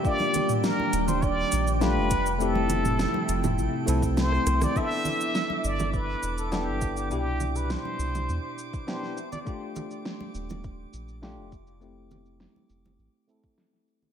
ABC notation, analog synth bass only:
X:1
M:4/4
L:1/16
Q:1/4=102
K:Gmix
V:1 name="Analog synth bass" clef=bass
z6 _E,,,3 z _B,,,3 F,,,3- | F,,,4 z2 F,,,2 A,,, z C,,3 z C,, z | z6 G,,,3 z E,,,3 G,,,3 | C,,4 z2 C,,2 E,, z6 z |
z6 _E,,,3 z _B,,,3 F,,,3- | F,,,4 z2 F,,,2 A,,, z6 z |]